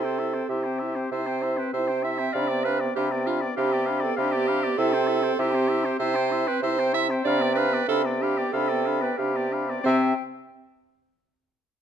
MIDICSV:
0, 0, Header, 1, 6, 480
1, 0, Start_track
1, 0, Key_signature, 0, "major"
1, 0, Tempo, 614125
1, 1837, Time_signature, 4, 2, 24, 8
1, 5664, Tempo, 652174
1, 9026, End_track
2, 0, Start_track
2, 0, Title_t, "Flute"
2, 0, Program_c, 0, 73
2, 17, Note_on_c, 0, 79, 67
2, 140, Note_on_c, 0, 84, 66
2, 152, Note_off_c, 0, 79, 0
2, 258, Note_on_c, 0, 79, 64
2, 270, Note_off_c, 0, 84, 0
2, 378, Note_off_c, 0, 79, 0
2, 383, Note_on_c, 0, 84, 67
2, 505, Note_on_c, 0, 79, 62
2, 517, Note_off_c, 0, 84, 0
2, 622, Note_on_c, 0, 84, 63
2, 634, Note_off_c, 0, 79, 0
2, 755, Note_on_c, 0, 79, 64
2, 767, Note_off_c, 0, 84, 0
2, 861, Note_off_c, 0, 79, 0
2, 866, Note_on_c, 0, 84, 74
2, 995, Note_on_c, 0, 79, 74
2, 1006, Note_off_c, 0, 84, 0
2, 1114, Note_on_c, 0, 84, 77
2, 1125, Note_off_c, 0, 79, 0
2, 1240, Note_on_c, 0, 79, 67
2, 1252, Note_off_c, 0, 84, 0
2, 1346, Note_off_c, 0, 79, 0
2, 1351, Note_on_c, 0, 84, 71
2, 1466, Note_on_c, 0, 79, 70
2, 1477, Note_off_c, 0, 84, 0
2, 1596, Note_on_c, 0, 84, 68
2, 1608, Note_off_c, 0, 79, 0
2, 1711, Note_on_c, 0, 79, 72
2, 1723, Note_off_c, 0, 84, 0
2, 1834, Note_off_c, 0, 79, 0
2, 1842, Note_on_c, 0, 83, 81
2, 1954, Note_on_c, 0, 79, 73
2, 1966, Note_off_c, 0, 83, 0
2, 2073, Note_on_c, 0, 83, 67
2, 2084, Note_off_c, 0, 79, 0
2, 2194, Note_on_c, 0, 79, 70
2, 2205, Note_off_c, 0, 83, 0
2, 2307, Note_off_c, 0, 79, 0
2, 2311, Note_on_c, 0, 83, 75
2, 2440, Note_on_c, 0, 79, 70
2, 2451, Note_off_c, 0, 83, 0
2, 2559, Note_on_c, 0, 83, 74
2, 2571, Note_off_c, 0, 79, 0
2, 2678, Note_on_c, 0, 79, 67
2, 2690, Note_off_c, 0, 83, 0
2, 2790, Note_off_c, 0, 79, 0
2, 2795, Note_on_c, 0, 83, 86
2, 2911, Note_on_c, 0, 79, 78
2, 2923, Note_off_c, 0, 83, 0
2, 3022, Note_on_c, 0, 83, 84
2, 3034, Note_off_c, 0, 79, 0
2, 3145, Note_on_c, 0, 79, 77
2, 3156, Note_off_c, 0, 83, 0
2, 3258, Note_off_c, 0, 79, 0
2, 3262, Note_on_c, 0, 83, 86
2, 3369, Note_on_c, 0, 79, 81
2, 3381, Note_off_c, 0, 83, 0
2, 3496, Note_on_c, 0, 83, 79
2, 3508, Note_off_c, 0, 79, 0
2, 3597, Note_on_c, 0, 79, 82
2, 3609, Note_off_c, 0, 83, 0
2, 3710, Note_off_c, 0, 79, 0
2, 3714, Note_on_c, 0, 84, 94
2, 3839, Note_on_c, 0, 79, 83
2, 3851, Note_off_c, 0, 84, 0
2, 3955, Note_on_c, 0, 84, 77
2, 3967, Note_off_c, 0, 79, 0
2, 4070, Note_on_c, 0, 79, 82
2, 4081, Note_off_c, 0, 84, 0
2, 4193, Note_off_c, 0, 79, 0
2, 4197, Note_on_c, 0, 84, 85
2, 4306, Note_on_c, 0, 79, 78
2, 4318, Note_off_c, 0, 84, 0
2, 4438, Note_on_c, 0, 84, 86
2, 4450, Note_off_c, 0, 79, 0
2, 4559, Note_on_c, 0, 79, 78
2, 4571, Note_off_c, 0, 84, 0
2, 4684, Note_off_c, 0, 79, 0
2, 4688, Note_on_c, 0, 84, 97
2, 4799, Note_on_c, 0, 79, 84
2, 4811, Note_off_c, 0, 84, 0
2, 4920, Note_on_c, 0, 84, 88
2, 4932, Note_off_c, 0, 79, 0
2, 5051, Note_on_c, 0, 79, 82
2, 5063, Note_off_c, 0, 84, 0
2, 5162, Note_off_c, 0, 79, 0
2, 5166, Note_on_c, 0, 84, 91
2, 5306, Note_on_c, 0, 79, 87
2, 5318, Note_off_c, 0, 84, 0
2, 5429, Note_on_c, 0, 84, 79
2, 5440, Note_off_c, 0, 79, 0
2, 5550, Note_on_c, 0, 79, 85
2, 5562, Note_off_c, 0, 84, 0
2, 5667, Note_off_c, 0, 79, 0
2, 5679, Note_on_c, 0, 83, 88
2, 5792, Note_on_c, 0, 79, 82
2, 5803, Note_off_c, 0, 83, 0
2, 5908, Note_on_c, 0, 83, 80
2, 5919, Note_off_c, 0, 79, 0
2, 6017, Note_on_c, 0, 79, 74
2, 6028, Note_off_c, 0, 83, 0
2, 6133, Note_off_c, 0, 79, 0
2, 6139, Note_on_c, 0, 83, 88
2, 6260, Note_on_c, 0, 79, 77
2, 6271, Note_off_c, 0, 83, 0
2, 6376, Note_on_c, 0, 83, 80
2, 6387, Note_off_c, 0, 79, 0
2, 6499, Note_on_c, 0, 79, 73
2, 6510, Note_off_c, 0, 83, 0
2, 6612, Note_off_c, 0, 79, 0
2, 6620, Note_on_c, 0, 83, 85
2, 6738, Note_on_c, 0, 79, 76
2, 6749, Note_off_c, 0, 83, 0
2, 6858, Note_on_c, 0, 83, 80
2, 6869, Note_off_c, 0, 79, 0
2, 6990, Note_on_c, 0, 79, 70
2, 7001, Note_off_c, 0, 83, 0
2, 7096, Note_off_c, 0, 79, 0
2, 7100, Note_on_c, 0, 83, 70
2, 7226, Note_on_c, 0, 79, 68
2, 7237, Note_off_c, 0, 83, 0
2, 7344, Note_on_c, 0, 83, 69
2, 7355, Note_off_c, 0, 79, 0
2, 7476, Note_on_c, 0, 79, 70
2, 7487, Note_off_c, 0, 83, 0
2, 7584, Note_off_c, 0, 79, 0
2, 7588, Note_on_c, 0, 79, 99
2, 7855, Note_off_c, 0, 79, 0
2, 9026, End_track
3, 0, Start_track
3, 0, Title_t, "Oboe"
3, 0, Program_c, 1, 68
3, 35, Note_on_c, 1, 72, 68
3, 149, Note_on_c, 1, 76, 73
3, 161, Note_off_c, 1, 72, 0
3, 264, Note_on_c, 1, 72, 65
3, 276, Note_off_c, 1, 76, 0
3, 380, Note_off_c, 1, 72, 0
3, 385, Note_on_c, 1, 76, 67
3, 494, Note_on_c, 1, 72, 66
3, 506, Note_off_c, 1, 76, 0
3, 614, Note_on_c, 1, 76, 72
3, 626, Note_off_c, 1, 72, 0
3, 745, Note_on_c, 1, 72, 67
3, 757, Note_off_c, 1, 76, 0
3, 865, Note_off_c, 1, 72, 0
3, 870, Note_on_c, 1, 76, 72
3, 986, Note_on_c, 1, 72, 64
3, 998, Note_off_c, 1, 76, 0
3, 1110, Note_on_c, 1, 76, 73
3, 1122, Note_off_c, 1, 72, 0
3, 1227, Note_on_c, 1, 72, 66
3, 1239, Note_off_c, 1, 76, 0
3, 1347, Note_off_c, 1, 72, 0
3, 1352, Note_on_c, 1, 76, 76
3, 1466, Note_on_c, 1, 72, 74
3, 1478, Note_off_c, 1, 76, 0
3, 1585, Note_on_c, 1, 76, 75
3, 1597, Note_off_c, 1, 72, 0
3, 1703, Note_on_c, 1, 72, 67
3, 1714, Note_off_c, 1, 76, 0
3, 1812, Note_off_c, 1, 72, 0
3, 1816, Note_on_c, 1, 77, 79
3, 1935, Note_on_c, 1, 74, 73
3, 1946, Note_off_c, 1, 77, 0
3, 2065, Note_on_c, 1, 77, 76
3, 2077, Note_off_c, 1, 74, 0
3, 2191, Note_on_c, 1, 74, 70
3, 2202, Note_off_c, 1, 77, 0
3, 2307, Note_off_c, 1, 74, 0
3, 2312, Note_on_c, 1, 77, 71
3, 2434, Note_on_c, 1, 74, 71
3, 2446, Note_off_c, 1, 77, 0
3, 2551, Note_on_c, 1, 77, 76
3, 2563, Note_off_c, 1, 74, 0
3, 2665, Note_on_c, 1, 74, 79
3, 2677, Note_off_c, 1, 77, 0
3, 2784, Note_off_c, 1, 74, 0
3, 2788, Note_on_c, 1, 77, 80
3, 2914, Note_on_c, 1, 74, 76
3, 2925, Note_off_c, 1, 77, 0
3, 3017, Note_on_c, 1, 77, 84
3, 3028, Note_off_c, 1, 74, 0
3, 3127, Note_on_c, 1, 74, 75
3, 3138, Note_off_c, 1, 77, 0
3, 3250, Note_off_c, 1, 74, 0
3, 3254, Note_on_c, 1, 77, 89
3, 3377, Note_on_c, 1, 74, 81
3, 3389, Note_off_c, 1, 77, 0
3, 3500, Note_on_c, 1, 77, 88
3, 3511, Note_off_c, 1, 74, 0
3, 3623, Note_on_c, 1, 74, 79
3, 3634, Note_off_c, 1, 77, 0
3, 3735, Note_off_c, 1, 74, 0
3, 3741, Note_on_c, 1, 76, 92
3, 3853, Note_on_c, 1, 72, 89
3, 3864, Note_off_c, 1, 76, 0
3, 3966, Note_on_c, 1, 76, 81
3, 3977, Note_off_c, 1, 72, 0
3, 4089, Note_on_c, 1, 72, 76
3, 4101, Note_off_c, 1, 76, 0
3, 4206, Note_off_c, 1, 72, 0
3, 4212, Note_on_c, 1, 76, 87
3, 4332, Note_on_c, 1, 72, 80
3, 4344, Note_off_c, 1, 76, 0
3, 4444, Note_on_c, 1, 76, 88
3, 4456, Note_off_c, 1, 72, 0
3, 4572, Note_on_c, 1, 72, 87
3, 4584, Note_off_c, 1, 76, 0
3, 4682, Note_off_c, 1, 72, 0
3, 4687, Note_on_c, 1, 76, 90
3, 4813, Note_on_c, 1, 72, 79
3, 4825, Note_off_c, 1, 76, 0
3, 4938, Note_on_c, 1, 76, 90
3, 4950, Note_off_c, 1, 72, 0
3, 5060, Note_on_c, 1, 72, 78
3, 5072, Note_off_c, 1, 76, 0
3, 5179, Note_off_c, 1, 72, 0
3, 5186, Note_on_c, 1, 76, 90
3, 5308, Note_on_c, 1, 72, 85
3, 5320, Note_off_c, 1, 76, 0
3, 5429, Note_on_c, 1, 76, 84
3, 5440, Note_off_c, 1, 72, 0
3, 5551, Note_on_c, 1, 72, 82
3, 5562, Note_off_c, 1, 76, 0
3, 5667, Note_off_c, 1, 72, 0
3, 5680, Note_on_c, 1, 77, 96
3, 5788, Note_on_c, 1, 74, 84
3, 5799, Note_off_c, 1, 77, 0
3, 5905, Note_on_c, 1, 77, 86
3, 5916, Note_off_c, 1, 74, 0
3, 6024, Note_on_c, 1, 74, 75
3, 6035, Note_off_c, 1, 77, 0
3, 6124, Note_off_c, 1, 74, 0
3, 6129, Note_on_c, 1, 77, 81
3, 6256, Note_on_c, 1, 74, 76
3, 6267, Note_off_c, 1, 77, 0
3, 6383, Note_on_c, 1, 77, 82
3, 6394, Note_off_c, 1, 74, 0
3, 6495, Note_on_c, 1, 74, 76
3, 6506, Note_off_c, 1, 77, 0
3, 6607, Note_off_c, 1, 74, 0
3, 6611, Note_on_c, 1, 77, 86
3, 6722, Note_on_c, 1, 74, 73
3, 6733, Note_off_c, 1, 77, 0
3, 6848, Note_on_c, 1, 77, 73
3, 6859, Note_off_c, 1, 74, 0
3, 6965, Note_on_c, 1, 74, 66
3, 6976, Note_off_c, 1, 77, 0
3, 7082, Note_off_c, 1, 74, 0
3, 7086, Note_on_c, 1, 77, 75
3, 7218, Note_on_c, 1, 74, 70
3, 7229, Note_off_c, 1, 77, 0
3, 7342, Note_on_c, 1, 77, 67
3, 7353, Note_off_c, 1, 74, 0
3, 7466, Note_on_c, 1, 74, 64
3, 7477, Note_off_c, 1, 77, 0
3, 7581, Note_off_c, 1, 74, 0
3, 7586, Note_on_c, 1, 76, 101
3, 7795, Note_off_c, 1, 76, 0
3, 9026, End_track
4, 0, Start_track
4, 0, Title_t, "Clarinet"
4, 0, Program_c, 2, 71
4, 0, Note_on_c, 2, 69, 102
4, 383, Note_on_c, 2, 67, 96
4, 395, Note_off_c, 2, 69, 0
4, 871, Note_off_c, 2, 67, 0
4, 874, Note_on_c, 2, 72, 110
4, 1236, Note_on_c, 2, 71, 96
4, 1248, Note_off_c, 2, 72, 0
4, 1352, Note_off_c, 2, 71, 0
4, 1357, Note_on_c, 2, 72, 109
4, 1592, Note_off_c, 2, 72, 0
4, 1595, Note_on_c, 2, 76, 106
4, 1825, Note_on_c, 2, 74, 118
4, 1837, Note_off_c, 2, 76, 0
4, 2066, Note_off_c, 2, 74, 0
4, 2071, Note_on_c, 2, 71, 114
4, 2179, Note_off_c, 2, 71, 0
4, 2310, Note_on_c, 2, 67, 114
4, 2418, Note_off_c, 2, 67, 0
4, 2551, Note_on_c, 2, 65, 101
4, 2658, Note_off_c, 2, 65, 0
4, 2789, Note_on_c, 2, 67, 116
4, 3136, Note_off_c, 2, 67, 0
4, 3151, Note_on_c, 2, 69, 109
4, 3259, Note_on_c, 2, 67, 126
4, 3271, Note_off_c, 2, 69, 0
4, 3734, Note_on_c, 2, 69, 127
4, 3745, Note_off_c, 2, 67, 0
4, 4214, Note_on_c, 2, 67, 121
4, 4226, Note_off_c, 2, 69, 0
4, 4680, Note_off_c, 2, 67, 0
4, 4684, Note_on_c, 2, 72, 127
4, 5061, Note_on_c, 2, 71, 117
4, 5073, Note_off_c, 2, 72, 0
4, 5175, Note_off_c, 2, 71, 0
4, 5180, Note_on_c, 2, 72, 123
4, 5415, Note_off_c, 2, 72, 0
4, 5424, Note_on_c, 2, 76, 124
4, 5532, Note_off_c, 2, 76, 0
4, 5661, Note_on_c, 2, 74, 127
4, 5884, Note_off_c, 2, 74, 0
4, 5889, Note_on_c, 2, 71, 127
4, 6123, Note_off_c, 2, 71, 0
4, 6132, Note_on_c, 2, 69, 127
4, 6239, Note_off_c, 2, 69, 0
4, 6368, Note_on_c, 2, 67, 111
4, 6601, Note_on_c, 2, 69, 119
4, 6612, Note_off_c, 2, 67, 0
4, 6966, Note_on_c, 2, 71, 101
4, 6977, Note_off_c, 2, 69, 0
4, 7085, Note_on_c, 2, 67, 105
4, 7096, Note_off_c, 2, 71, 0
4, 7566, Note_off_c, 2, 67, 0
4, 7571, Note_on_c, 2, 72, 107
4, 7786, Note_off_c, 2, 72, 0
4, 9026, End_track
5, 0, Start_track
5, 0, Title_t, "French horn"
5, 0, Program_c, 3, 60
5, 29, Note_on_c, 3, 60, 66
5, 155, Note_on_c, 3, 64, 67
5, 166, Note_off_c, 3, 60, 0
5, 274, Note_on_c, 3, 60, 65
5, 286, Note_off_c, 3, 64, 0
5, 392, Note_off_c, 3, 60, 0
5, 396, Note_on_c, 3, 64, 72
5, 514, Note_on_c, 3, 60, 69
5, 526, Note_off_c, 3, 64, 0
5, 642, Note_on_c, 3, 64, 69
5, 654, Note_off_c, 3, 60, 0
5, 751, Note_on_c, 3, 60, 66
5, 763, Note_off_c, 3, 64, 0
5, 872, Note_off_c, 3, 60, 0
5, 884, Note_on_c, 3, 64, 73
5, 993, Note_on_c, 3, 60, 64
5, 1005, Note_off_c, 3, 64, 0
5, 1123, Note_on_c, 3, 64, 70
5, 1135, Note_off_c, 3, 60, 0
5, 1242, Note_on_c, 3, 60, 73
5, 1254, Note_off_c, 3, 64, 0
5, 1359, Note_off_c, 3, 60, 0
5, 1373, Note_on_c, 3, 64, 77
5, 1489, Note_on_c, 3, 60, 71
5, 1500, Note_off_c, 3, 64, 0
5, 1601, Note_on_c, 3, 64, 68
5, 1612, Note_off_c, 3, 60, 0
5, 1716, Note_on_c, 3, 60, 69
5, 1728, Note_off_c, 3, 64, 0
5, 1837, Note_off_c, 3, 60, 0
5, 1844, Note_on_c, 3, 62, 87
5, 1961, Note_on_c, 3, 59, 73
5, 1973, Note_off_c, 3, 62, 0
5, 2089, Note_on_c, 3, 62, 71
5, 2100, Note_off_c, 3, 59, 0
5, 2204, Note_on_c, 3, 59, 75
5, 2216, Note_off_c, 3, 62, 0
5, 2313, Note_off_c, 3, 59, 0
5, 2317, Note_on_c, 3, 62, 82
5, 2441, Note_on_c, 3, 59, 73
5, 2453, Note_off_c, 3, 62, 0
5, 2554, Note_on_c, 3, 62, 78
5, 2566, Note_off_c, 3, 59, 0
5, 2684, Note_on_c, 3, 59, 71
5, 2696, Note_off_c, 3, 62, 0
5, 2790, Note_off_c, 3, 59, 0
5, 2794, Note_on_c, 3, 62, 80
5, 2921, Note_on_c, 3, 59, 71
5, 2933, Note_off_c, 3, 62, 0
5, 3043, Note_on_c, 3, 62, 79
5, 3055, Note_off_c, 3, 59, 0
5, 3167, Note_on_c, 3, 59, 76
5, 3178, Note_off_c, 3, 62, 0
5, 3273, Note_off_c, 3, 59, 0
5, 3287, Note_on_c, 3, 62, 89
5, 3399, Note_on_c, 3, 59, 78
5, 3411, Note_off_c, 3, 62, 0
5, 3513, Note_on_c, 3, 62, 75
5, 3525, Note_off_c, 3, 59, 0
5, 3637, Note_on_c, 3, 59, 83
5, 3648, Note_off_c, 3, 62, 0
5, 3733, Note_off_c, 3, 59, 0
5, 3737, Note_on_c, 3, 64, 102
5, 3859, Note_on_c, 3, 60, 86
5, 3871, Note_off_c, 3, 64, 0
5, 3973, Note_on_c, 3, 64, 79
5, 3985, Note_off_c, 3, 60, 0
5, 4079, Note_on_c, 3, 60, 82
5, 4091, Note_off_c, 3, 64, 0
5, 4201, Note_off_c, 3, 60, 0
5, 4219, Note_on_c, 3, 64, 90
5, 4331, Note_on_c, 3, 60, 83
5, 4343, Note_off_c, 3, 64, 0
5, 4449, Note_on_c, 3, 64, 91
5, 4461, Note_off_c, 3, 60, 0
5, 4571, Note_on_c, 3, 60, 85
5, 4583, Note_off_c, 3, 64, 0
5, 4690, Note_off_c, 3, 60, 0
5, 4699, Note_on_c, 3, 64, 86
5, 4815, Note_on_c, 3, 60, 77
5, 4827, Note_off_c, 3, 64, 0
5, 4939, Note_on_c, 3, 64, 81
5, 4951, Note_off_c, 3, 60, 0
5, 5065, Note_on_c, 3, 60, 83
5, 5077, Note_off_c, 3, 64, 0
5, 5181, Note_off_c, 3, 60, 0
5, 5187, Note_on_c, 3, 64, 92
5, 5299, Note_on_c, 3, 60, 83
5, 5311, Note_off_c, 3, 64, 0
5, 5416, Note_on_c, 3, 64, 78
5, 5428, Note_off_c, 3, 60, 0
5, 5545, Note_on_c, 3, 60, 87
5, 5557, Note_off_c, 3, 64, 0
5, 5664, Note_off_c, 3, 60, 0
5, 5668, Note_on_c, 3, 62, 99
5, 5778, Note_on_c, 3, 59, 85
5, 5789, Note_off_c, 3, 62, 0
5, 5893, Note_on_c, 3, 62, 80
5, 5904, Note_off_c, 3, 59, 0
5, 6005, Note_on_c, 3, 59, 80
5, 6016, Note_off_c, 3, 62, 0
5, 6124, Note_off_c, 3, 59, 0
5, 6129, Note_on_c, 3, 62, 85
5, 6255, Note_on_c, 3, 59, 77
5, 6266, Note_off_c, 3, 62, 0
5, 6372, Note_on_c, 3, 62, 83
5, 6383, Note_off_c, 3, 59, 0
5, 6496, Note_on_c, 3, 59, 75
5, 6507, Note_off_c, 3, 62, 0
5, 6610, Note_off_c, 3, 59, 0
5, 6619, Note_on_c, 3, 62, 81
5, 6733, Note_on_c, 3, 59, 73
5, 6744, Note_off_c, 3, 62, 0
5, 6850, Note_on_c, 3, 62, 77
5, 6861, Note_off_c, 3, 59, 0
5, 6969, Note_on_c, 3, 59, 78
5, 6980, Note_off_c, 3, 62, 0
5, 7084, Note_off_c, 3, 59, 0
5, 7089, Note_on_c, 3, 62, 76
5, 7206, Note_on_c, 3, 59, 69
5, 7217, Note_off_c, 3, 62, 0
5, 7328, Note_on_c, 3, 62, 69
5, 7339, Note_off_c, 3, 59, 0
5, 7456, Note_on_c, 3, 59, 64
5, 7467, Note_off_c, 3, 62, 0
5, 7567, Note_off_c, 3, 59, 0
5, 7572, Note_on_c, 3, 60, 110
5, 7787, Note_off_c, 3, 60, 0
5, 9026, End_track
6, 0, Start_track
6, 0, Title_t, "Bassoon"
6, 0, Program_c, 4, 70
6, 0, Note_on_c, 4, 48, 95
6, 328, Note_off_c, 4, 48, 0
6, 383, Note_on_c, 4, 48, 88
6, 813, Note_off_c, 4, 48, 0
6, 871, Note_on_c, 4, 48, 90
6, 1297, Note_off_c, 4, 48, 0
6, 1353, Note_on_c, 4, 48, 89
6, 1779, Note_off_c, 4, 48, 0
6, 1835, Note_on_c, 4, 48, 100
6, 2258, Note_off_c, 4, 48, 0
6, 2317, Note_on_c, 4, 48, 101
6, 2735, Note_off_c, 4, 48, 0
6, 2796, Note_on_c, 4, 48, 99
6, 3209, Note_off_c, 4, 48, 0
6, 3266, Note_on_c, 4, 48, 101
6, 3677, Note_off_c, 4, 48, 0
6, 3737, Note_on_c, 4, 48, 115
6, 4151, Note_off_c, 4, 48, 0
6, 4210, Note_on_c, 4, 48, 109
6, 4632, Note_off_c, 4, 48, 0
6, 4683, Note_on_c, 4, 48, 113
6, 5045, Note_off_c, 4, 48, 0
6, 5175, Note_on_c, 4, 48, 101
6, 5604, Note_off_c, 4, 48, 0
6, 5665, Note_on_c, 4, 48, 121
6, 6077, Note_off_c, 4, 48, 0
6, 6129, Note_on_c, 4, 48, 99
6, 6548, Note_off_c, 4, 48, 0
6, 6608, Note_on_c, 4, 48, 105
6, 7033, Note_off_c, 4, 48, 0
6, 7090, Note_on_c, 4, 48, 91
6, 7524, Note_off_c, 4, 48, 0
6, 7582, Note_on_c, 4, 48, 110
6, 7793, Note_off_c, 4, 48, 0
6, 9026, End_track
0, 0, End_of_file